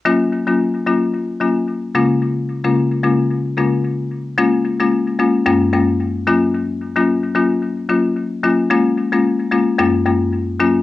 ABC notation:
X:1
M:4/4
L:1/16
Q:"Swing 16ths" 1/4=111
K:Gb
V:1 name="Marimba"
[G,B,DF]3 [G,B,DF]3 [G,B,DF]2 z2 [G,B,DF] z3 [D,A,B,DF]2 | z3 [D,A,B,DF]3 [D,A,B,DF]2 z2 [D,A,B,DF] z4 z | [A,B,DF]3 [A,B,DF]3 [A,B,DF]2 [G,,A,B,DF]2 [G,,A,B,DF] z3 [G,B,DF]2 | z3 [G,B,DF]3 [G,B,DF]2 z2 [G,B,DF] z3 [G,B,DF] z |
[A,B,DF]3 [A,B,DF]3 [A,B,DF]2 [G,,A,B,DF]2 [G,,A,B,DF] z3 [G,B,DF]2 |]